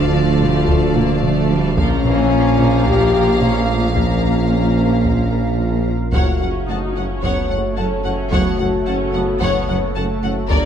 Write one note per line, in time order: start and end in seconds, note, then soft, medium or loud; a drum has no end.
0.00 1.79 D1 medium
0.00 1.74 D2 medium
0.00 1.74 D3 medium
0.00 0.14 F3 medium
0.00 1.74 F3 medium
0.00 1.74 A3 medium
0.00 1.74 D4 medium
0.00 0.13 F4 loud
0.00 1.74 A4 medium
0.00 1.74 D5 medium
0.00 1.74 F5 medium
0.00 1.74 A5 medium
0.14 0.30 F3 medium
0.14 0.41 A3 medium
0.14 1.48 F4 medium
0.41 0.57 F3 medium
0.41 0.69 G3 medium
0.41 taiko low-mid medium
0.68 0.85 D3 medium
0.68 0.96 A3 medium
0.68 taiko medium
0.96 1.23 A#3 medium
0.96 1.12 D4 medium
0.96 taiko low-mid soft
1.23 1.40 F3 medium
1.23 1.50 A3 medium
1.23 taiko low-mid medium
1.50 1.67 F3 medium
1.50 1.78 G3 medium
1.77 5.90 A#1 medium
1.77 6.16 A#1 medium
1.77 5.90 A#2 medium
1.77 5.83 F3 medium
1.77 6.11 F3 medium
1.77 2.05 F3 medium
1.77 5.87 A#3 medium
1.77 1.94 A#3 medium
1.77 2.83 C#4 loud
1.77 6.14 F4 medium
1.77 6.15 A#4 medium
1.77 5.90 F5 medium
1.77 6.10 F5 medium
1.77 5.90 A#5 medium
1.77 taiko loud
2.05 2.32 E3 medium
2.05 2.21 A#4 medium
2.05 taiko low-mid soft
2.33 3.42 F3 medium
2.59 2.76 C#4 medium
2.59 taiko low-mid medium
2.86 3.03 A#3 medium
2.86 3.41 G4 loud
2.86 taiko medium
3.14 3.31 A#4 medium
3.14 taiko low-mid soft
3.41 3.58 C#4 medium
3.41 3.68 C#4 medium
3.41 3.96 F4 medium
3.41 taiko low-mid medium
3.69 3.96 A3 medium
3.69 3.85 C#4 medium
3.95 4.12 A#3 medium
3.95 5.87 A#3 soft
3.95 5.87 C#4 medium
3.95 taiko medium
4.23 4.40 A#4 medium
4.51 4.67 C#4 medium
4.78 4.94 C#4 medium
5.05 5.22 A#3 medium
5.05 taiko medium
5.32 5.49 A#4 soft
5.60 5.76 C#4 medium
5.87 6.03 C#4 medium
6.13 6.22 F#1 medium
6.13 6.25 F#1 medium
6.13 10.52 F#1 medium
6.13 6.22 F#2 medium
6.13 10.47 C#3 medium
6.13 6.31 F#3 medium
6.13 6.40 A3 soft
6.13 10.51 A3 medium
6.13 10.47 A3 soft
6.13 7.19 F#4 medium
6.13 10.51 F#4 medium
6.13 10.51 A4 medium
6.13 6.39 C#5 medium
6.13 10.51 C#5 medium
6.13 6.40 C#5 medium
6.13 6.39 F#5 medium
6.13 taiko medium
6.41 6.52 F#1 soft
6.41 6.49 F#1 soft
6.41 6.49 F#2 soft
6.41 6.68 C#4 medium
6.41 6.58 F#4 medium
6.41 6.50 F#5 soft
6.68 6.76 F#1 soft
6.68 6.80 F#1 soft
6.68 6.76 F#2 soft
6.68 6.85 A3 medium
6.68 6.96 D#4 medium
6.68 6.77 F#5 soft
6.68 6.77 A5 soft
6.96 7.04 F#1 soft
6.96 7.07 F#1 soft
6.96 7.04 F#2 soft
6.96 7.12 A3 medium
6.96 7.23 C#4 medium
6.96 7.04 F#5 soft
6.96 7.05 F#5 soft
7.23 7.31 F#1 medium
7.23 7.34 F#1 medium
7.23 7.31 F#2 medium
7.23 7.40 F#3 medium
7.23 7.51 B3 soft
7.23 7.77 C#5 medium
7.23 7.49 C#5 medium
7.23 7.49 F#5 medium
7.23 taiko medium
7.50 7.61 F#1 soft
7.50 7.59 F#1 soft
7.50 7.59 F#2 soft
7.50 7.78 A3 soft
7.50 7.67 F#4 soft
7.50 7.59 F#5 soft
7.77 7.86 F#1 soft
7.77 7.89 F#1 soft
7.77 7.86 F#2 soft
7.77 7.94 A3 medium
7.77 8.04 C#4 medium
7.77 8.32 A4 medium
7.77 7.85 F#5 soft
7.77 7.85 A5 soft
7.77 7.86 A5 soft
8.04 8.16 F#1 soft
8.04 8.13 F#1 soft
8.04 8.13 F#2 soft
8.04 8.22 A3 medium
8.04 8.32 C#4 medium
8.04 8.12 F#5 soft
8.04 8.13 F#5 medium
8.31 8.40 F#1 medium
8.31 8.43 F#1 medium
8.31 8.41 F#2 medium
8.31 8.49 F#3 medium
8.31 8.60 B3 medium
8.31 9.39 F#4 medium
8.31 8.57 C#5 medium
8.31 8.57 F#5 medium
8.31 taiko medium
8.58 8.70 F#1 soft
8.58 8.68 F#1 soft
8.58 8.67 F#2 soft
8.58 8.87 A3 medium
8.58 8.76 F#4 medium
8.58 8.66 F#5 soft
8.58 8.67 F#5 soft
8.87 8.95 F#1 soft
8.87 8.98 F#1 soft
8.87 8.95 F#2 soft
8.87 9.04 A3 medium
8.87 9.14 C#4 medium
8.87 8.95 F#5 soft
8.87 8.95 A5 soft
9.13 9.25 F#1 soft
9.13 9.22 F#1 soft
9.13 9.22 F#2 soft
9.13 9.31 A3 medium
9.13 9.96 B3 medium
9.13 9.21 F#5 soft
9.13 9.22 F#5 soft
9.41 9.52 F#1 medium
9.41 9.50 F#1 medium
9.41 9.49 F#2 medium
9.41 9.58 F#3 medium
9.41 9.66 C#5 medium
9.41 9.67 C#5 medium
9.41 9.96 C#5 loud
9.41 9.66 F#5 medium
9.41 taiko medium
9.68 9.79 F#1 medium
9.68 9.77 F#1 soft
9.68 9.77 F#2 soft
9.68 9.85 F#4 medium
9.68 9.76 F#5 medium
9.68 9.77 F#5 medium
9.96 10.07 F#1 medium
9.96 10.04 F#1 medium
9.96 10.04 F#2 medium
9.96 10.12 A3 medium
9.96 10.50 A3 medium
9.96 10.49 A4 medium
9.96 10.04 F#5 medium
9.96 10.04 A5 medium
10.23 10.34 F#1 medium
10.23 10.31 F#1 soft
10.23 10.31 F#2 medium
10.23 10.40 A3 medium
10.23 10.32 F#5 medium
10.50 10.65 G1 medium
10.50 10.59 G1 medium
10.50 10.62 G1 medium
10.50 10.58 G2 medium
10.50 10.65 D3 medium
10.50 10.65 G3 medium
10.50 10.65 A#3 medium
10.50 10.65 D4 medium
10.50 10.65 A#4 medium
10.50 10.65 D5 medium
10.50 taiko medium